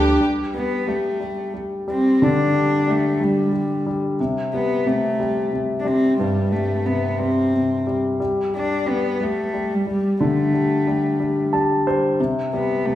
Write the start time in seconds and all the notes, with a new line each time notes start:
Already playing: D2 G3 D4 G4 B4 D5 G5 D6
0.21 G3
0.55 G3 B3
0.87 G3 A3
1.20 G3
1.54 G3
1.88 G3 C4
2.22 D3 D4
2.54 G3
2.88 G3 A3
3.20 G3
3.52 G3
3.86 G3
4.20 C3
4.53 G3 B3
4.86 C3 A3
5.20 G3
5.52 C3
5.80 D4
5.85 G3 C4
6.18 G2 G3
6.52 G3 A3
6.86 C3 B3
7.19 G3 C4
7.54 C3
7.87 G3
8.20 G3
8.54 G3 D4
8.86 G3 B3
9.21 G3 A3
9.54 G3
9.74 G3
9.87 G3
10.20 D3
10.25 A3
10.54 G3
10.87 G3
11.20 G3
11.53 G3 A5
11.87 G3 C5
12.20 C3
12.53 G3 B3
12.86 C3 A3